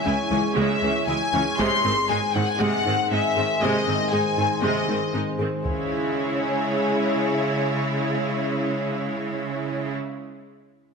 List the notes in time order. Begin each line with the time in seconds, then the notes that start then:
Already playing: G#3 E4 G#4 C#5
0.05 C#2 G#3 C#4 E4 G#5
0.32 C#2 E3 G#3 C#4
0.56 C#2 C#3 G#3 E5
0.83 C#2 E3 G#3 C#4
1.08 C#2 E3 G#3 E4 G#5
1.34 C#2 E3 C#4
1.58 G#2 C3 D#3 G#3 G#4 C5 C6, taiko
1.84 G#2 D#3 C4
2.09 G#2 G#3 D#4 G#4 G#5
2.35 G#2 D#3 C4 D#4 F#5
2.48 G#5
2.60 G#2 C3 G#3 F#5
2.86 G#2 D#3 C4 D#4
3.12 G#2 G#3 C4 D#4 E5
3.37 G#2 D#3 C4 G#4
3.62 G#2 C3 G#3 D#5
3.88 G#2 D#3 C4
4.12 G#2 G#3 D#4 G#4 G#5
4.38 G#2 D#3 C4 D#4
4.63 G#2 C3 G#3 D#5
4.89 G#2 D#3 C4 D#4
5.14 G#2 G#3 C4 D#4
5.39 G#2 D#3 C4 G#4
5.64 C#3 G#3 E4 G#4 C#5, taiko low